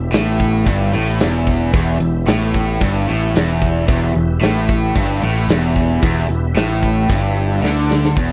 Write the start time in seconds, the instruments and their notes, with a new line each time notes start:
Already playing: picked electric bass E1, tonewheel organ B3 E4 G4 E5
0.12 picked electric bass A1, overdriven electric guitar A2, snare, closed hi-hat, tambourine
0.40 kick, closed hi-hat
0.65 picked electric bass G1, overdriven electric guitar G2, kick, closed hi-hat
0.93 picked electric bass A1, overdriven electric guitar A2, closed hi-hat
1.20 picked electric bass E1, overdriven electric guitar E2, snare, closed hi-hat, tambourine
1.47 kick, closed hi-hat
1.73 picked electric bass E1, overdriven electric guitar E2, kick, closed hi-hat
2.00 picked electric bass E1, overdriven electric guitar E2, closed hi-hat
2.27 picked electric bass A1, overdriven electric guitar A2, snare, closed hi-hat, tambourine
2.54 kick, closed hi-hat
2.81 picked electric bass G1, overdriven electric guitar G2, kick, closed hi-hat
3.07 picked electric bass A1, overdriven electric guitar A2, closed hi-hat
3.36 picked electric bass E1, overdriven electric guitar E2, snare, closed hi-hat, tambourine
3.62 kick, closed hi-hat
3.87 picked electric bass E1, overdriven electric guitar E2, tonewheel organ E4 G4 B4 E5, kick, closed hi-hat
4.14 picked electric bass E1, overdriven electric guitar E2, closed hi-hat
4.41 picked electric bass A1, overdriven electric guitar A2, snare, closed hi-hat, tambourine
4.69 kick, closed hi-hat
4.95 picked electric bass G1, overdriven electric guitar G2, kick, closed hi-hat
5.22 picked electric bass A1, overdriven electric guitar A2, closed hi-hat
5.48 picked electric bass E1, overdriven electric guitar E2, snare, closed hi-hat, tambourine
5.76 kick, closed hi-hat
6.02 picked electric bass E1, overdriven electric guitar E2, kick, closed hi-hat
6.28 picked electric bass E1, overdriven electric guitar E2, closed hi-hat
6.55 picked electric bass A1, overdriven electric guitar A2, snare, closed hi-hat, tambourine
6.83 kick, closed hi-hat
7.09 picked electric bass G1, overdriven electric guitar G2, kick, closed hi-hat
7.37 closed hi-hat
7.61 picked electric bass D2, overdriven electric guitar D3, snare
7.91 snare
8.05 snare
8.16 picked electric bass E1, overdriven electric guitar E2, kick, closed hi-hat